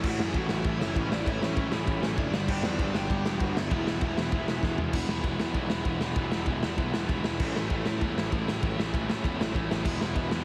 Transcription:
Already playing: A2 E3 A3 C#4 E4 A4
0.03 A1 A2 E3 A3 C#4 E4 F#4, kick, crash
0.08 F#5
0.19 F#2 A2 E3 A3 C#4 E4, snare
0.23 G#4 G#5
0.33 A1 A2 E3 A3 C#4 E4 F#4 F#5, kick, ride
0.49 A1 A2 E3 A3 C#4 E4, snare
0.64 A1 A2 E3 A3 C#4 E4 E5, kick, ride
0.80 F#1 A2 E3 A3 C#4 E4 E5, snare
0.95 A1 A2 E3 A3 C#4 E4 C#5, kick, ride
1.09 A2 E3 A3 C#4 D4 E4 D5, snare
1.23 A1 A2 E3 A3 C#4 E4 E5, kick, ride
1.28 E4
1.39 A1 A2 E3 A3 C#4 E4
1.43 C#4 C#5, snare
1.53 A1 A2 E3 A3 C#4 E4, kick, ride
1.58 E3 A3
1.69 A1 A2 E3 A3 C#4 E4, snare
1.74 A2 E3
1.85 A1 A2 E3 A3 C#4 E4, kick, ride
2.00 A1 A2 E3 A3 C#4 E4, snare
2.04 A2
2.15 F#1 A2 E3 A3 C#4 D4 E4, kick, ride
2.19 D5
2.31 G1 G2 D3 G3 B3 D4, snare
2.36 B3 D4
2.46 G1 G2 D3 G3 B3 D4 G4 G5, kick, crash
2.61 E2 G2 D3 G3 B3 D4 A4 A5, snare
2.78 G1 G2 D3 G3 B3 D4, kick, ride
2.92 G1 G2 D3 G3 B3 D4 G4 G5, snare
2.96 G2
3.08 G1 G2 D3 G3 B3 D4, kick, ride
3.22 E1 G2 D3 G3 B3 D4, snare
3.27 G2
3.39 G1 G2 D3 G3 B3 D4 F#4 F#5, kick, ride
3.56 G2 D3 G3 B3 D4 E4 E5, snare
3.70 E1 E2 B2 E3 G#3 B3 E4, kick, ride
3.87 E1 E3 G#3 B3 E4, snare
4.01 E1 E3 G#3 B3 E4, kick, ride
4.17 E1 E2 B2 E3 G#3 B3 E4, snare
4.31 E1 E3 G#3 B3 E4, kick, ride
4.48 E1 E3 G#3 B3 E4, snare
4.62 E1 E2 B2 E3 G#3 B3 E4, kick, snare
4.78 E1 E3 G#3 B3 E4, floor tom
4.93 E1 E2 B2 E3 G#3 B3 E4, kick, crash
5.08 E1 E2 B2 E3 G#3 B3 E4, snare
5.23 E1 E2 B2 E3 G#3 B3 E4, kick, ride
5.39 E2 B2 E3 G#3 B3 E4, snare
5.54 B1 E2 B2 E3 G#3 B3 E4, kick, ride
5.70 E1 E2 B2 E3 G#3 B3 E4, snare
5.85 E1 E2 B2 E3 G#3 B3 E4, kick, ride
6.01 E1 E2 B2 E3 G#3 B3 E4, snare
6.16 E1 E2 B2 E3 G#3 B3 E4, kick, ride
6.31 E1 E2 B2 E3 G#3 B3 E4, snare
6.46 E1 E2 B2 E3 G#3 B3 E4, kick, ride
6.63 E2 B2 E3 G#3 B3 E4, snare
6.77 B1 E2 B2 E3 G#3 B3 E4, kick, ride
6.93 E1 E2 B2 E3 G#3 B3 E4, snare
7.09 E1 E2 B2 E3 G#3 B3, kick, ride
7.13 E4
7.24 E1 E2 B2 E3 G#3 B3 E4, snare
7.40 A1 A2 E3 A3 C#4 E4, kick, crash
7.56 A1 A2 E3 A3 C#4 E4, snare
7.70 A1 A2 E3 A3 C#4 E4, kick, ride
7.86 A2 E3 A3 C#4 E4, snare
8.01 E2 A2 E3 A3 C#4 E4, kick, ride
8.17 A1 A2 E3 A3 C#4 E4, snare
8.32 A1 A2 E3 A3 C#4 E4, kick, ride
8.46 A1 A2 E3 A3 C#4 E4, snare
8.62 A1 A2 E3 A3 C#4 E4, kick, ride
8.77 A1 A2 E3 A3 C#4 E4, snare
8.93 A1 A2 E3 A3 C#4 E4, kick, ride
9.08 A2 E3 A3 C#4 E4, snare
9.24 E2 A2 E3 A3 C#4 E4, kick, ride
9.38 A1 A2 E3 A3 C#4 E4, snare
9.52 A1 A2 E3 A3 C#4 E4, kick, ride
9.69 A1 A2 E3 A3 C#4 E4, snare
9.82 E1 E3 G#3 B3 E4, kick, crash
9.86 E2 B2 E3 E4
9.99 E1 E2 B2 E3 G#3 B3 E4, snare
10.14 E1 E2 E3 G#3 B3 E4, kick, ride
10.18 B2 E3
10.29 E2 B2 E3 G#3 B3 E4, snare
10.33 E2

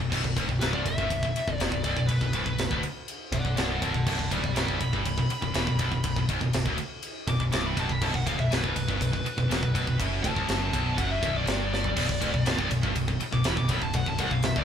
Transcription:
0.00 B0 B1, kick
0.11 B0 B1, kick, crash
0.24 B0 B1, kick
0.36 D1 D2, kick, ride
0.49 B0 B1, kick
0.60 B0 B1 B4, snare, ride
0.73 C1 C2 D5, kick
0.85 B0 B1 E5, kick, ride
0.98 G1 G2, kick
1.10 B0 B1, kick, ride
1.22 B0 B1, kick
1.34 muted picked electric bass stroke, muted distorted electric guitar stroke, ride
1.47 B0 B1, kick
1.54 D5
1.59 E1 E2, snare, ride
1.72 B0 B1, kick
1.84 B0 B1 D5, kick, ride
1.96 B0 B1, kick
2.07 B0 B1 B4, kick, ride
2.21 B0 B1, kick
2.33 C1 C2 B4, kick, ride
2.46 B0 B1, kick
2.58 B0 B1, snare, ride
2.70 D1 D2, kick
2.83 ride
3.08 ride
3.32 B0 B1 D5 F#5, kick, ride
3.45 B0 B1, kick
3.56 C1 C2 D5 F#5, snare, ride
3.82 B0 B1 F#5 A5, kick, ride
3.94 B0 B1, kick
4.06 B0 B1 F#5 A5, kick, crash
4.19 B0 B1, kick
4.31 D1 D2 D5 B5, kick, ride
4.44 B0 B1, kick
4.55 B0 B1 D5 B5, snare, ride
4.68 C1 C2, kick
4.80 B0 B1 B5, kick, ride
4.93 G1 G2, kick
5.05 B0 B1, kick, ride
5.17 B0 B1, kick
5.28 muted picked electric bass stroke, muted distorted electric guitar stroke, ride
5.42 B0 B1, kick
5.53 E1 E2, snare, ride
5.67 B0 B1, kick
5.79 B0 B1, kick, ride
5.91 B0 B1, kick
6.04 B0 B1, kick, ride
6.16 B0 B1, kick
6.28 C1 C2, kick, ride
6.41 B0 B1, kick
6.53 B0 B1, snare, ride
6.65 D1 D2, kick
6.78 ride
7.03 ride
7.27 B0 B1 D6, kick, ride
7.40 B0 B1, kick
7.52 C1 C2 D6, snare, ride
7.66 B5
7.77 B0 B1 A5, kick, ride
7.89 B0 B1 B5, kick
8.01 B0 B1 A5, kick, crash
8.14 B0 B1 F#5, kick
8.27 D1 D2 F5, kick, ride
8.38 B0 B1 E5, kick
8.51 B0 B1 B4, snare, ride
8.63 C1 C2, kick
8.76 B0 B1, kick, ride
8.88 G1 G2, kick
9.01 B0 B1, kick, ride
9.13 B0 B1, kick
9.25 muted picked electric bass stroke, muted distorted electric guitar stroke, ride
9.38 B0 B1, kick
9.49 E1 E2, snare, ride
9.62 B0 B1, kick
9.75 B0 B1, kick, ride
9.87 B0 B1, kick
10.00 F#1 F#2, kick, ride
10.23 D1 D2 A5, kick, ride
10.36 C1 C2, kick
10.49 F#1 F#2, snare, ride
10.73 B0 B1, kick, ride
10.98 F#1 F#2 F#5, kick, ride
11.10 E5
11.22 B0 B1, kick, ride
11.36 D5
11.47 G1 G2, snare, ride
11.74 D5, snare
11.84 floor tom
11.96 B0 B1, kick, crash, splash
12.09 B0 B1, kick
12.21 D1 D2, kick, ride
12.34 B0 B1, kick
12.45 B0 B1, snare, ride
12.58 C1 C2, kick
12.71 B0 B1, kick, ride
12.83 G1 G2, kick
12.95 B0 B1, kick, ride
13.07 B0 B1, kick
13.20 muted distorted electric guitar stroke, muted picked electric bass stroke, ride
13.32 B0 B1 D6, kick
13.44 E1 E2 B5, snare, ride
13.57 B0 B1 D6, kick
13.69 B0 B1 B5, kick, ride
13.81 B0 B1 A5, kick
13.93 B0 B1 F#5, kick, ride
14.06 B0 B1 A5, kick
14.18 C1 C2 F#5, kick, ride
14.31 B0 B1 F5, kick
14.43 B0 B1 E5, snare, ride
14.56 D1 D2 D5, kick

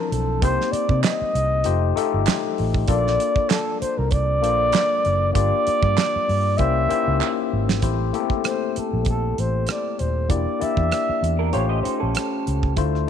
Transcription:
Already playing: F3 C4 D4 E4 A#4 A5
0.11 B1 A4, closed hi-hat
0.41 C2 A#3 C4 D#4 G4 C5, kick, closed hi-hat
0.61 snare
0.72 D5, muted fingered electric bass stroke, closed hi-hat
0.89 C3, kick
1.03 D#5, snare, clap, closed hi-hat
1.21 muted fingered electric bass stroke
1.35 C2, closed hi-hat
1.64 F1 A3 D#4 F4 G4 C5, closed hi-hat
1.96 A3 D#4 F4 G4 A4, closed hi-hat
2.14 G1
2.26 snare, clap, closed hi-hat
2.58 A1, open hi-hat
2.74 kick
2.88 A#1 A#3 D4 F4 A4 D5, kick, closed hi-hat
3.07 snare
3.20 closed hi-hat
3.36 kick
3.49 A4, snare, clap, closed hi-hat
3.81 C5, muted fingered electric bass stroke, closed hi-hat
3.98 C2 A#4
4.11 D5, kick, closed hi-hat
4.42 A#1 A#3 D4 F4 A4 C5, closed hi-hat
4.50 D5
4.72 snare, clap, closed hi-hat
5.05 F#1, closed hi-hat
5.33 G1 A#3 D4 F4 G4 D5, kick, closed hi-hat
5.67 muted fingered electric bass stroke, closed hi-hat
5.83 G2, kick
5.97 snare, clap, closed hi-hat
6.16 muted fingered electric bass stroke
6.29 G2, open hi-hat
6.58 C2 A#3 C#4 E4 G4 C5 E5, kick, closed hi-hat
6.89 A#3 C#4 D#4 G4 C5, closed hi-hat
6.96 E4
7.08 C#2
7.21 clap
7.53 G#1
7.69 snare
7.81 A1 A3 C4 E4 G4 C5, kick, closed hi-hat
8.13 A3 A#3 E4 G4 A4, closed hi-hat
8.20 C4
8.30 kick
8.44 C5, cross-stick, closed hi-hat
8.76 A4, muted fingered electric bass stroke, closed hi-hat
8.93 A#1
9.05 A4, kick, closed hi-hat
9.38 A1 C5, closed hi-hat
9.67 cross-stick, closed hi-hat
9.71 D5
9.99 D#1 C5, closed hi-hat
10.29 E1 A#3 D4 E4 G4 D5, kick, closed hi-hat
10.60 A#3 D4 E4 G4 D5 E5, muted fingered electric bass stroke, closed hi-hat
10.77 E2, kick
10.92 cross-stick, closed hi-hat
11.09 muted fingered electric bass stroke
11.23 E2, closed hi-hat
11.39 D4 A#4
11.53 A1 A3 C#4 F4 G4 C5 C#5, closed hi-hat
11.69 G4 D#5
11.83 D#4 C5, closed hi-hat
12.00 A#1 C#4 A4
12.15 cross-stick, closed hi-hat
12.47 C#2, closed hi-hat
12.63 kick
12.76 D2 A3 D4 E4 F4 C5, kick, closed hi-hat
12.95 cross-stick

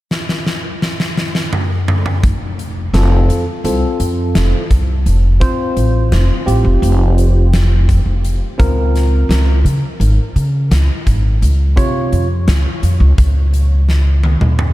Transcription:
0.11 snare
0.29 snare
0.46 snare
0.82 snare
1.00 snare
1.17 snare
1.35 snare
1.53 mid tom
1.88 mid tom
2.06 mid tom
2.24 F1, kick, closed hi-hat
2.59 closed hi-hat
2.94 F1 C4 F4 A4, snare, closed hi-hat
3.29 F2, closed hi-hat
3.64 C2 C4 F4 A4, closed hi-hat
4.00 F2, closed hi-hat
4.35 F1, snare, closed hi-hat
4.71 C2, kick, closed hi-hat
5.06 F1, closed hi-hat
5.40 C4 F4 C5, kick, closed hi-hat
5.77 A1, closed hi-hat
6.12 F1, snare, closed hi-hat
6.46 A1 C4 F4 G4, closed hi-hat
6.65 F1
6.82 F1, closed hi-hat
7.18 closed hi-hat
7.53 snare, closed hi-hat
7.89 kick, closed hi-hat
8.06 F1
8.25 closed hi-hat
8.58 C#2 C4 F4 A#4, kick, closed hi-hat
8.95 snare, closed hi-hat
9.29 C#2, snare, closed hi-hat
9.65 C#3, closed hi-hat
10.00 G#1, closed hi-hat
10.36 C#3, closed hi-hat
10.71 C#2, snare, closed hi-hat
11.07 G#1, kick, closed hi-hat
11.42 C#2, closed hi-hat
11.76 C3 F4 C#5, kick, closed hi-hat
12.12 F2, closed hi-hat
12.48 C#2, snare, closed hi-hat
12.83 F2, closed hi-hat
13.00 C#2
13.18 C#2, kick, closed hi-hat
13.54 closed hi-hat
13.89 snare
14.24 high tom
14.41 D#2, mid tom
14.59 mid tom

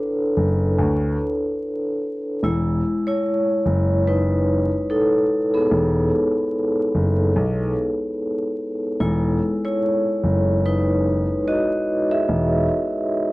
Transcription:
Already playing: D4 A4 B4
0.37 F#1
0.79 D2
2.43 E1 G#3 E4
3.07 E4 C#5
3.66 F#1
4.08 D#4 B4
4.90 D#4 A4
5.54 B3 G#4
5.71 E1
6.95 F#1
7.36 B1
9.00 E1 G#3 E4
9.65 E4 C#5
10.24 F#1
10.66 D#4 B4
11.48 F#4 D#5
12.11 G#4 E5
12.29 E1

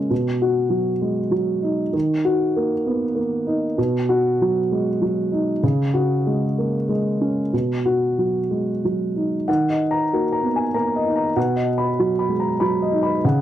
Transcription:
Already playing: C#3 G#3 A#3 C#4 F#4
0.10 B2
0.42 F#4
0.70 F#3
1.01 G#3
1.31 F#3
1.62 D#4
1.93 D#3
2.25 F#4
2.56 A#3
2.87 B3
3.15 A#3
3.47 D#4
3.78 B2
4.09 F#4
4.41 F#3
4.71 G#3
5.02 F#3
5.32 D#4
5.63 C#3
5.94 F#4
6.27 G#3
6.58 A#3
6.89 G#3
7.21 C#4
7.53 B2
7.86 F#4
8.18 F#3
8.51 G#3
8.85 F#3
9.16 D#4
9.48 D#3 F#5
9.70 D#5
9.91 A#5
10.13 A#3 F#4
10.32 A#5
10.43 B3
10.56 G#5
10.74 A#3 A#5
10.96 D#5
11.06 D#4
11.16 A#5
11.36 B2 F#5
11.56 D#5
11.78 B5
11.99 F#3 F#4
12.19 B5
12.29 G#3
12.40 A#5
12.60 F#3 B5
12.82 D#5
12.92 D#4
13.03 B5
13.25 C#3 F#5

